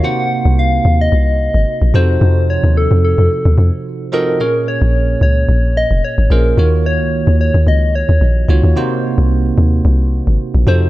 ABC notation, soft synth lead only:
X:1
M:4/4
L:1/16
Q:"Swing 16ths" 1/4=110
K:Bbm
V:1 name="Soft synth lead"
g4 f3 e6- e c2- | c2 d2 =A2 A6 z2 B2 | B2 d4 d4 e2 d2 B2- | B2 d4 d2 e2 d4 z2 |
z12 z2 c2 |]